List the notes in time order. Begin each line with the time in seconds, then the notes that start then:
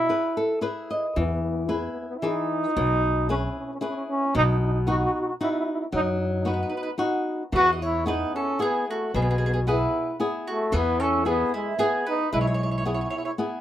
Already playing: E4
0.09 E4 G#4 B4
0.37 A4
0.61 E4 G#4 B4
0.91 D#5
1.16 E2 E3 B3
1.25 B3
1.33 B3
1.42 B3
1.50 B3
1.58 B3
1.65 B3 E4 G#4
1.69 B3 B4
1.79 B3
1.85 B3
1.92 B3
2.00 B3
2.08 B3
2.17 E4
2.22 E3 D#4 G#4 B4
2.77 B1 B2
3.29 C#4 E4 G#4 B4
3.37 C#4
3.46 C#4
3.51 C#4
3.59 C#4
3.66 C#4
3.73 C#4
3.80 C#4 E4 G#4 B4
3.89 C#4
3.96 C#4
4.08 C#4
4.35 B1 B2 D#4
4.45 D#4
4.50 D#4
4.60 D#4
4.66 D#4
4.73 D#4
4.87 B3 D#4 F#4
4.98 F#4
5.04 F#4
5.14 F#4
5.21 F#4
5.28 F#4
5.41 B3 D#4 E4 F#4
5.51 E4
5.60 E4
5.65 E4
5.72 E4
5.81 E4
5.92 F#2 F#3 D#4
6.03 D#4
6.12 D#4
6.21 D#4
6.27 D#4
6.33 D#4
6.40 D#4
6.45 B3 D#4 F#4 B4
6.53 D#4 B4
6.62 D#4 B4
6.69 D#4 B4
6.76 D#4 B4
6.83 D#4 B4
6.98 B3 D#4 F#4
7.52 E2 E3 F#4 B4
7.72 F#4 D#5
7.82 E4 C#5
8.06 B3 D#4 E4 G#4 B4
8.35 C#4 A4
8.59 B3 E4 G#4
8.89 A3 F#4
9.14 B1 B2 B3 G#4
9.22 B3 G#4
9.29 B3 G#4
9.38 B3 G#4
9.46 B3 G#4
9.53 B3 G#4
9.67 B3 E4 G#4 B4
10.20 B3 E4 G#4
10.48 A3 F#4
10.72 E2 E3 B3 G#4
11.00 C#4 A4
11.25 B3 E4 G#4
11.54 G#3 E4
11.78 B3 E4 G#4
12.07 D#4 B4
12.32 B1 G#3 E4 B4
12.41 E4 C#5
12.47 E4 C#5
12.54 E4 C#5
12.63 E4 C#5
12.71 E4 C#5
12.78 E4 C#5
12.85 B3 E4 G#4 C#5
12.93 E4 C#5
13.01 E4 C#5
13.09 E4 C#5
13.16 E4 C#5
13.24 E4 C#5
13.38 B3 E4 G#4